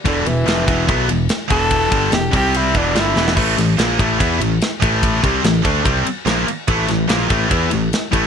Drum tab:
CC |----------------|----------------|x---------------|----------------|
RD |x-x-x-x-x-x-x-x-|x-x-x-x-x-x-x---|--x-x-x-x-x-x-x-|x-x-x-x-x-x-x-x-|
SD |----o-------o---|----o-------o-oo|--o-o-------o---|----o-------o---|
BD |o-----o-o-----o-|o-o---o---o-----|o-----o-o-----o-|o-o---o-o-------|

CC |----------------|
RD |x-x-x-x-x-x-x-x-|
SD |--o-o-------o---|
BD |o-----o-o-----o-|